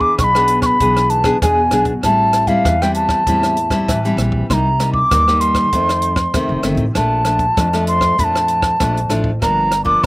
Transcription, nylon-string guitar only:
Already playing: E3 B3 D4 G#4
0.19 B2
0.35 B3 D4 G#4
0.81 E3 B3 D4 G#4
1.24 B3 D4 G#4
1.42 B2 B3 D4 G#4
1.72 B3 D4 G#4
2.04 A2 G3 C4 E4
2.48 G3 C4 E4
2.66 E3
2.82 G3 C4 E4
3.28 A2 G3 C4 E4
3.71 G3 C4 E4
3.89 E3
4.05 G3 C4 E4
4.50 C3 G3 A#3 D#4
4.80 G3 A#3 D#4
5.12 G2 G3 A#3 D#4
5.28 G3 A#3 D#4
5.73 F2 D#3 A3 C4
6.34 C3 D#3 A3 C4
6.63 D#3 A3 C4
6.96 A#2 F3 A3 D4
7.25 F3 A3 D4
7.57 F2 F3 A3 D4
7.73 F3 A3 D4
8.18 A#2 F3 A3 D4
8.80 F2 F3 A3 D4
9.10 F3 A3 D4
9.42 G2 F3 A#3 D4
9.85 F3 A#3 D4

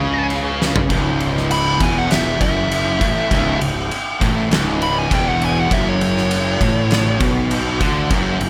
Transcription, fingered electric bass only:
Already playing: C#2
0.90 C#1
1.80 E1
2.41 F#1
3.01 A1
3.31 C#1
3.61 C#1
4.21 A1
4.50 C#1
5.11 E1
5.71 F#1
6.61 A1
7.20 B1
7.81 D2
8.11 F#1
8.41 F#1

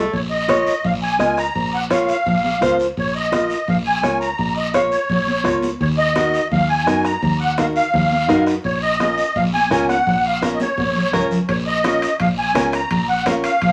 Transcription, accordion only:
0.13 C#5
0.30 D#5
0.85 F5
1.03 G#5
1.39 A#5
1.74 F#5
1.91 F5
2.10 F5
2.99 C#5
3.16 D#5
3.69 F5
3.86 G#5
4.20 A#5
4.56 D#5
4.74 F5
4.91 C#5
5.80 C#5
5.98 D#5
6.52 F5
6.69 G#5
7.04 A#5
7.40 F#5
7.59 F5
7.76 F5
8.65 C#5
8.83 D#5
9.36 F5
9.53 G#5
9.89 F#5
10.25 F5
10.43 F5
10.53 D#5
10.61 C#5
11.49 C#5
11.67 D#5
12.21 F5
12.39 G#5
12.74 A#5
13.09 F#5
13.26 F5
13.44 F5

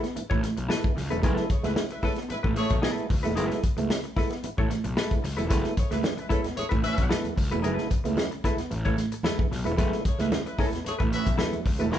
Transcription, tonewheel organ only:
0.16 B3 E4
0.69 G#3 A3 B3 E4
1.10 G#3 A3 B3 E4
1.22 G#3 A3 B3 E4
1.63 G#3 A3 B3 E4
2.03 G#3 A3 B3 E4
2.30 B3 E4
2.84 G#3 A3 B3 E4
3.25 G#3 A3 B3 E4
3.37 G#3 A3 B3 E4
3.78 G#3 A3 B3 E4
4.17 G#3 A3 B3 E4
4.44 B3 E4
4.97 G#3 A3 B3 E4
5.38 G#3 A3 B3 E4
5.50 G#3 A3 B3 E4
5.91 G#3 A3 B3 E4
6.30 G#3 A3 B3 E4
6.57 B3 E4
7.10 G#3 A3 B3 E4
7.52 G#3 A3 B3 E4
7.64 G#3 A3 B3 E4
8.04 G#3 A3 B3 E4
8.44 G#3 A3 B3 E4
8.71 B3 E4
9.24 G#3 A3 B3 E4
9.65 G#3 A3 B3 E4
9.78 G#3 A3 B3 E4
10.19 G#3 A3 B3 E4
10.58 G#3 A3 B3 E4
10.85 B3 E4
11.38 G#3 A3 B3 E4
11.79 G#3 A3 B3 E4
11.91 G#3 A3 B3 E4

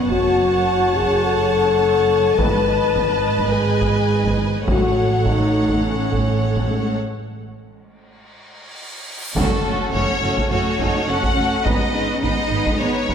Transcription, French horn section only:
0.10 F#4
0.97 G#4
1.25 A4
2.39 B4
3.53 G#4
4.69 F#4
5.25 D#4
5.83 C#4
6.68 G#3
9.34 A3 C#4
11.66 G#3
12.80 B3

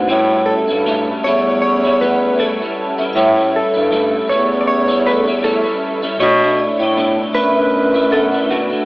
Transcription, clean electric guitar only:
0.08 A2 G3 C#4 E4
0.67 G3 C#4 E4
0.86 A2 G3 C#4 E4
1.25 A2 G3 C#4 E4
1.83 G3 C#4 E4
2.00 A2 G3 C#4 E4
2.38 A2 G3 C#4 E4
2.60 G3 C#4 E4
2.98 G3 C#4 E4
3.15 A2 G3 C#4 E4
3.35 G3 C#4 E4
3.74 G3 C#4 E4
3.91 A2 G3 C#4 E4
4.29 A2 G3 C#4 E4
4.88 G3 C#4 E4
5.06 A2 G3 C#4 E4
5.26 G3 C#4 E4
5.43 A2 G3 C#4 E4
5.63 G3 C#4 E4
6.02 G3 C#4 E4
6.19 B2 A3 D4 E4
6.42 A3 D4 E4
6.79 A3 D4 E4
6.97 B2 A3 D4 E4
7.33 B2 A3 D4 E4
7.94 A3 D4 E4
8.11 B2 A3 D4 E4
8.31 A3 D4 E4
8.50 B2 A3 D4 E4
8.70 A3 D4 E4

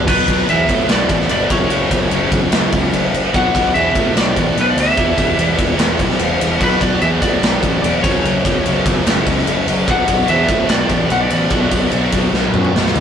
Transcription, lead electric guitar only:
0.09 B4
0.50 E5
0.92 D5
1.31 D5
1.51 C#5
3.36 F#5
3.74 E5
4.18 D5
4.28 D5
4.61 B4
4.70 D5
4.80 E5
6.64 B4
6.83 D5
6.95 D5
7.02 E5
7.22 D5
7.82 D5
8.03 C#5
9.91 F#5
10.29 E5
10.70 D5
10.81 D5
11.12 F#5
11.21 D5
11.32 D5

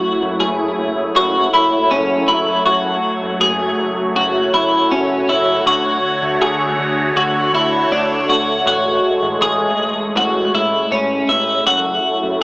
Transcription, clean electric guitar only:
Already playing: F#4
0.40 G#4
1.16 F#4
1.54 E4
1.91 C#4
2.28 E4
2.66 F#4
3.41 G#4
4.16 F#4
4.54 E4
4.91 C#4
5.29 E4
5.67 F#4
6.42 G#4
7.17 F#4
7.55 E4
7.92 D4
8.30 F#4
8.67 F#4
9.42 G#4
10.17 F#4
10.55 E4
10.92 C#4
11.29 E4
11.67 F#4

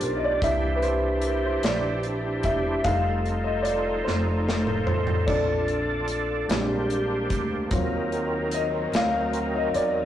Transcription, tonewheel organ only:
Already playing: D4 F4 G4 D5
0.41 E4 C5
2.87 D#4 F4 A4 C5
5.29 D4 D5
6.49 A#3 G4 C5
7.71 F#3 C4 D#4 A#4

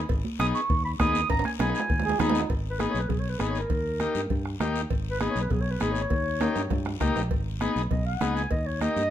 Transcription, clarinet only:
0.40 D#6
0.55 C#6
0.85 B5
1.00 D#6
1.30 A#5
1.45 G#5
1.60 G#5
1.76 G#5
2.70 B4
2.80 G#4
2.90 C#5
3.00 B4
3.09 G#4
3.20 C#5
3.29 B4
3.39 G#4
3.49 C#5
3.59 A#4
5.11 B4
5.20 G#4
5.30 C#5
5.41 B4
5.51 G#4
5.61 C#5
5.71 B4
5.81 G#4
5.92 C#5
6.01 C#5
7.91 D#5
8.06 F#5
8.36 G#5
8.51 D#5
8.66 C#5
8.81 D#5

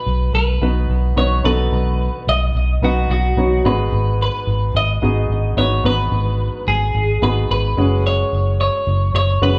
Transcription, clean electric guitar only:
Already playing: B4
0.35 B4
1.18 C#5
1.45 B4
2.29 D#5
2.84 F#4
3.11 F#4
3.66 B4
4.22 B4
4.77 D#5
5.58 C#5
5.86 B4
6.68 G#4
7.23 B4
7.51 B4
8.07 C#5
8.61 C#5
9.16 C#5
9.43 B4

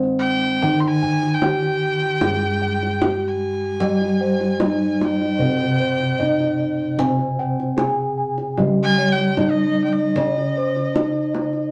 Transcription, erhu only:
0.19 G5
0.80 C6
0.88 G#5
1.34 G5
3.28 G#5
5.04 G5
8.83 G#5
9.12 G5
9.40 G5
9.51 D#5
9.84 G5
9.92 D#5

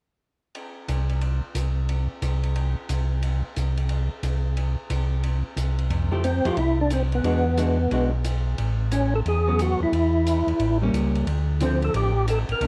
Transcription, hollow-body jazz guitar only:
6.12 F3 A3 E4 G4
6.45 F3 A3 E4 G4
7.24 E3 G#3 D4 F#4
7.57 E3 G#3 D4 F#4
7.91 E3 G#3 D4 F#4
9.47 F#3 B3 C#4
10.82 G3 A#3 C#4
11.61 D3 F3 C4 E4
12.62 E3 A#3 D4

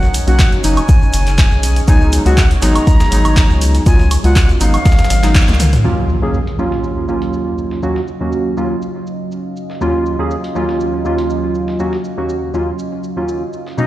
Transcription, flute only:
Already playing: F#5
0.28 F#5
0.64 G#5
1.88 G#5
2.26 F#5
2.62 A#5
3.86 G#5
4.24 F#5
4.61 F5
13.78 D#5

